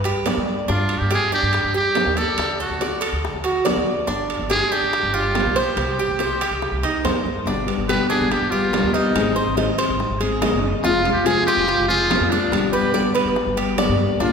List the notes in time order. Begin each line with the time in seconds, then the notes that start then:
Already playing: G2
0.04 G4, high bongo, high timbale
0.26 D5, high bongo, low bongo, high timbale, low timbale
0.37 G3
0.49 high bongo
0.68 G2 D4 F4, high bongo
0.89 high timbale
0.99 G2 G4
1.11 G4 G#4, high bongo, high timbale, low timbale
1.32 D4 G4
1.43 G2
1.53 high bongo, high timbale
1.64 G2
1.74 G4
1.95 high bongo, low bongo, high timbale, low timbale
2.06 D#2
2.17 A4 D5, high timbale
2.38 D2, high bongo, high timbale
2.60 F#4 A4, high bongo
2.70 D2
2.81 D5, high bongo, high timbale, low timbale
3.01 A4, high timbale
3.12 D2
3.25 high bongo
3.33 D2
3.44 F#4, high bongo, high timbale
3.65 D5, high bongo, low bongo, high timbale, low timbale
3.77 D2
3.87 high bongo
4.07 G1 D4, high bongo
4.30 high timbale
4.39 G1
4.50 G4 G#4, high bongo, high timbale, low timbale
4.72 D4 G4
4.82 G1
4.93 high bongo, high timbale
5.03 G1
5.14 F4 G4
5.35 high bongo, low bongo, high timbale, low timbale
5.45 B1
5.56 G4 C5, high timbale
5.76 C2, high bongo, high timbale
5.99 G4, high bongo
6.08 C2
6.19 C5, high bongo, high timbale, low timbale
6.41 G4, high timbale
6.51 C2
6.62 high bongo
6.72 C2
6.83 D#2 D#4, high bongo, high timbale
7.04 F2 C5, high bongo, low bongo, high timbale, low timbale
7.25 G2, high bongo
7.46 G1 B2 D3 G3 B3 D4 G4, high bongo
7.66 G3 B3 G4, high timbale
7.78 G1
7.88 B2 D3 G3 B3 G4 B4, high bongo, high timbale, low timbale
8.10 D4 G#4
8.20 G1
8.30 G4, muted nylon-string guitar stroke, high bongo, high timbale
8.41 G1
8.50 G3 B3 F4 G4
8.72 B2 D3 G3 B3 G4, high bongo, low bongo, high timbale, low timbale
8.83 D#2
8.93 G3 B3 D#4 G4 D#5, high timbale
9.14 G#1 D#3 G#3 C4 D#4 G#4, high bongo, high timbale
9.36 C4 D#4 G#4 C5, high bongo
9.47 G#1
9.57 D#3 G#3 C4 D#4 G#4 D#5, high bongo, high timbale, low timbale
9.78 C5, high timbale
9.89 G#1
9.98 muted nylon-string guitar stroke, high bongo
10.10 G#1
10.20 C4 D#4 G#4, high bongo, high timbale
10.41 D#3 G#3 C4 D#4 G#4 D#5, high bongo, low bongo, high timbale, low timbale
10.52 F#1
10.62 C4 D#4 G#4, high bongo
10.84 F1 C3 F3 G#3 C4 F4, high bongo
11.04 G#3 C4 F4, high timbale
11.13 F1 G4
11.24 C3 F3 G#3 C4 F4 G#4, high bongo, high timbale, low timbale
11.47 F4 G4
11.57 F1
11.67 muted nylon-string guitar stroke, high bongo, high timbale
11.78 F1
11.87 G#3 C4 F4 G#4
12.10 C3 F3 G#3 C4 F4, high bongo, low bongo, high timbale, low timbale
12.20 F2
12.30 G#3 C4 D4 F4 D5, high timbale
12.51 G1 B2 D3 G3 B3 G4, high bongo, high timbale
12.72 G3 B3 G4 B4, high bongo
12.83 G1
12.93 B2 D3 G3 B3 G4 D5, high bongo, high timbale, low timbale
13.15 B4, high timbale
13.25 G1
13.35 muted nylon-string guitar stroke, high bongo
13.46 G1
13.55 G3 B3 G4, high bongo, high timbale
13.76 B2 D3 G3 B3 G4 D5, high bongo, low bongo, high timbale, low timbale
13.89 G2
13.98 G3 B3 G4, high bongo
14.20 A#1 D3 A#3 D4 F4, high bongo